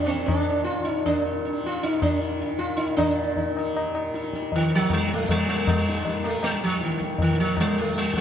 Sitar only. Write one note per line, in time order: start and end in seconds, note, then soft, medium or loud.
0.05 0.26 C4 medium
0.05 0.09 D4 medium
0.26 0.63 D4 medium
0.49 0.66 D#4 soft
0.64 0.86 F4 medium
0.85 1.05 D#4 medium
1.06 1.24 D4 medium
1.25 1.43 D#4 soft
1.45 1.63 D#4 soft
1.66 1.85 F4 medium
1.83 2.02 D#4 medium
2.02 2.20 D4 medium
2.21 2.39 D#4 soft
2.41 2.59 D#4 soft
2.59 2.79 F4 medium
2.77 2.96 D#4 medium
2.97 3.51 D4 medium
2.97 3.17 D#4 soft
3.38 3.56 D#4 soft
3.58 3.75 D#4 soft
3.95 4.13 D#4 soft
4.15 4.32 D#4 soft
4.35 4.52 D#4 soft
4.56 4.72 D#3 medium
4.75 4.93 F3 loud
4.93 5.12 G3 medium
5.13 5.31 A3 loud
5.31 5.48 G3 loud
5.49 5.67 G3 loud
5.68 6.27 G3 medium
5.88 6.05 D#4 soft
6.07 6.24 D#4 soft
6.25 6.44 A3 medium
6.44 6.63 G3 medium
6.64 6.83 F3 medium
6.84 7.00 D#3 medium
7.03 7.20 D#4 soft
7.22 7.40 D#3 medium
7.40 7.59 F3 medium
7.60 7.78 G3 loud
7.79 7.97 A3 loud
7.98 8.16 G3 medium
8.17 8.21 G3 medium